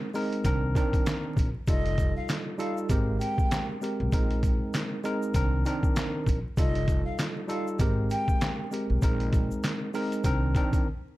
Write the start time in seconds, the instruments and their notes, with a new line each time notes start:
0.14 tine electric piano G#3 C4 D#4 A#4, open hi-hat, shaker
0.33 closed hi-hat
0.45 upright bass C2, tine electric piano D#3 C4 D4 A#4, kick, closed hi-hat, shaker
0.75 tine electric piano D#3 C4 D4 A#4, kick, closed hi-hat, shaker
0.93 kick, closed hi-hat, shaker
1.06 snare, clap, closed hi-hat, shaker
1.37 upright bass A#1, kick, closed hi-hat, shaker
1.67 upright bass F1, tine electric piano G3 D#4 F4 A4, flute D#5, kick, closed hi-hat, shaker
1.86 closed hi-hat
1.98 kick, closed hi-hat, shaker
2.17 flute F5
2.29 snare, clap, closed hi-hat, shaker
2.58 tine electric piano G3 D#4 F4 A4, flute F5, closed hi-hat, shaker
2.77 shaker
2.89 upright bass G#1, tine electric piano G#3 C4 G4 A#4, kick, closed hi-hat, shaker
3.20 flute G5, closed hi-hat, shaker
3.38 kick, shaker
3.51 snare, clap, closed hi-hat, shaker
3.81 tine electric piano G#3 C4 G4 A#4, closed hi-hat, shaker
4.00 upright bass B1
4.12 upright bass A#1, tine electric piano G#3 C4 D#4 A#4, kick, closed hi-hat, shaker
4.30 closed hi-hat
4.43 kick, closed hi-hat, shaker
4.74 snare, clap, closed hi-hat, shaker
5.04 tine electric piano G#3 C4 D#4 A#4, closed hi-hat, shaker
5.22 shaker
5.34 upright bass C2, tine electric piano D#3 C4 D4 A#4, kick, closed hi-hat, shaker
5.65 tine electric piano D#3 C4 D4 A#4, closed hi-hat, shaker
5.83 kick, shaker
5.96 snare, clap, closed hi-hat, shaker
6.26 upright bass A#1, kick, closed hi-hat, shaker
6.57 upright bass F1, tine electric piano G3 D#4 F4 A4, flute D#5, kick, closed hi-hat, shaker
6.75 closed hi-hat
6.88 kick, closed hi-hat, shaker
7.05 flute F5
7.19 snare, clap, closed hi-hat, shaker
7.48 tine electric piano G3 D#4 F4 A4, flute F5, closed hi-hat, shaker
7.67 shaker
7.79 upright bass G#1, tine electric piano G#3 C4 G4 A#4, kick, closed hi-hat, shaker
8.10 flute G5, closed hi-hat, shaker
8.28 kick, shaker
8.41 snare, clap, closed hi-hat, shaker
8.71 tine electric piano G#3 C4 G4 A#4, closed hi-hat, shaker
8.90 upright bass B1
9.02 upright bass A#1, tine electric piano G#3 C4 D#4 A#4, kick, closed hi-hat, shaker
9.20 closed hi-hat
9.33 kick, closed hi-hat, shaker
9.51 shaker
9.63 snare, clap, closed hi-hat, shaker
9.94 tine electric piano G#3 C4 D#4 A#4, open hi-hat, shaker
10.12 closed hi-hat, shaker
10.24 upright bass C2, tine electric piano D#3 C4 D4 A#4, kick, closed hi-hat, shaker
10.55 tine electric piano D#3 C4 D4 A#4, kick, closed hi-hat, shaker
10.73 kick, closed hi-hat, shaker